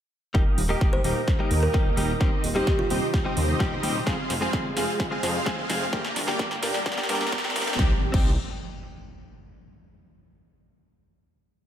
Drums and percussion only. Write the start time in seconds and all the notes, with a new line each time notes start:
0.35 kick, snare
0.58 open hi-hat
0.81 kick, snare
1.04 open hi-hat
1.28 kick, snare
1.51 open hi-hat
1.74 kick, snare
1.97 open hi-hat
2.21 kick, snare
2.44 open hi-hat
2.67 kick, snare
2.90 open hi-hat
3.14 kick, snare
3.37 open hi-hat
3.60 kick, snare
3.83 open hi-hat
4.07 kick, snare
4.30 snare, open hi-hat
4.53 kick, snare
4.77 snare, open hi-hat
5.00 kick, snare
5.23 snare, open hi-hat
5.46 kick, snare
5.70 snare, open hi-hat
5.93 kick, snare
6.05 snare
6.16 snare, open hi-hat
6.28 snare
6.39 kick, snare
6.51 snare
6.63 snare, open hi-hat
6.74 snare
6.86 kick, snare
6.92 snare
6.98 snare
7.03 snare
7.09 snare, open hi-hat
7.15 snare
7.21 snare
7.27 snare
7.32 kick, snare
7.38 snare
7.44 snare
7.50 snare
7.56 snare, open hi-hat
7.61 snare
7.67 snare
7.73 snare
7.79 kick, snare
8.14 kick, crash